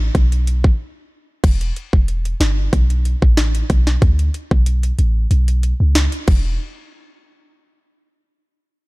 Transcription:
0.00 0.10 A1 loud
0.15 0.70 B1 loud
0.15 kick loud
0.15 closed hi-hat medium
0.32 closed hi-hat medium
0.47 closed hi-hat medium
0.64 kick loud
1.44 1.71 E1 loud
1.44 kick loud
1.44 closed hi-hat medium
1.44 crash loud
1.61 closed hi-hat medium
1.76 closed hi-hat medium
1.93 2.34 E1 medium
1.93 kick medium
2.08 closed hi-hat medium
2.25 closed hi-hat medium
2.40 2.68 G1 loud
2.40 snare loud
2.40 closed hi-hat medium
2.73 3.15 B1 loud
2.73 kick loud
2.73 closed hi-hat medium
2.90 closed hi-hat medium
3.05 closed hi-hat medium
3.22 3.63 A1 medium
3.22 kick medium
3.37 snare loud
3.37 closed hi-hat medium
3.55 closed hi-hat medium
3.70 3.97 B1 loud
3.70 kick loud
3.70 closed hi-hat medium
3.87 snare medium
4.02 4.30 D2 loud
4.02 kick loud
4.02 closed hi-hat medium
4.19 closed hi-hat medium
4.34 closed hi-hat medium
4.51 4.92 B1 loud
4.51 kick loud
4.66 closed hi-hat medium
4.83 closed hi-hat medium
4.99 5.26 A1 medium
4.99 closed hi-hat medium
5.31 5.73 B1 loud
5.31 closed hi-hat medium
5.48 closed hi-hat medium
5.63 closed hi-hat medium
5.80 6.08 C#2 medium
5.95 snare loud
5.95 closed hi-hat medium
6.12 closed hi-hat medium
6.28 6.58 E1 loud
6.28 kick loud
6.28 crash medium

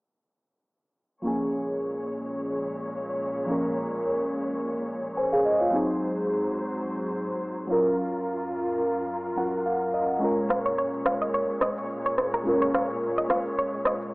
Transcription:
1.22 5.69 A#2 medium
1.22 3.44 F3 medium
1.22 5.69 G#3 medium
1.22 3.44 A#3 medium
1.22 3.45 C#4 medium
1.22 5.69 C#5 medium
1.27 3.46 G#4 medium
3.46 5.68 F3 medium
3.46 5.69 A#3 medium
3.46 5.70 C#4 medium
3.51 5.15 A#4 medium
5.17 5.32 C5 medium
5.17 5.32 G#5 medium
5.33 5.45 G#4 medium
5.33 5.45 F5 medium
5.45 5.60 D#5 medium
5.61 5.88 F4 soft
5.61 5.87 C#5 medium
5.71 7.67 G#2 medium
5.71 7.64 F#3 medium
5.71 7.67 F#3 medium
5.71 7.65 C4 medium
5.71 7.66 D#4 medium
5.71 7.67 C5 medium
5.76 7.67 G#4 medium
7.67 10.19 F#2 medium
7.67 9.33 F#3 medium
7.67 9.34 C#4 medium
7.67 10.19 F4 medium
7.67 9.35 F4 medium
7.67 10.19 A#4 medium
7.72 9.36 A#4 medium
9.36 10.21 F#3 medium
9.36 10.20 C#4 soft
9.36 10.21 F4 soft
9.36 10.22 A#4 medium
9.36 9.64 F#5 medium
9.66 9.92 F5 medium
9.94 10.20 D#5 medium
10.19 14.14 A#2 medium
10.19 12.41 G#3 medium
10.19 14.14 G#3 medium
10.19 12.42 C#4 medium
10.19 12.42 F4 medium
10.19 14.14 C#5 medium
10.19 shaker medium
10.24 12.43 A#4 medium
10.37 shaker medium
10.49 10.61 F5 medium
10.49 cross-stick medium
10.49 shaker medium
10.65 10.75 C#5 medium
10.65 shaker medium
10.78 10.89 C#5 medium
10.78 shaker medium
10.93 shaker medium
11.06 11.17 F5 medium
11.06 cross-stick medium
11.06 shaker medium
11.21 11.31 D#5 medium
11.21 shaker medium
11.34 11.45 C#5 medium
11.34 shaker medium
11.49 shaker soft
11.61 11.78 D#5 medium
11.61 cross-stick medium
11.61 shaker medium
11.77 11.87 C#5 medium
11.77 shaker medium
11.90 shaker medium
12.05 12.15 C#5 medium
12.05 shaker soft
12.18 cross-stick medium
12.18 shaker soft
12.33 12.43 A#4 medium
12.33 shaker medium
12.44 14.10 G#3 medium
12.44 14.10 C#4 medium
12.44 14.11 F4 medium
12.44 shaker medium
12.49 14.12 A#4 medium
12.62 12.71 C#5 medium
12.62 shaker medium
12.74 12.86 F5 medium
12.74 cross-stick medium
12.74 shaker medium
12.90 shaker medium
13.02 shaker medium
13.18 13.27 D#5 medium
13.18 shaker medium
13.30 13.42 F5 medium
13.30 cross-stick medium
13.30 shaker medium
13.46 shaker medium
13.58 13.70 C#5 medium
13.58 shaker medium
13.73 shaker soft
13.85 13.98 D#5 medium
13.85 cross-stick medium
13.85 shaker medium
14.01 shaker medium

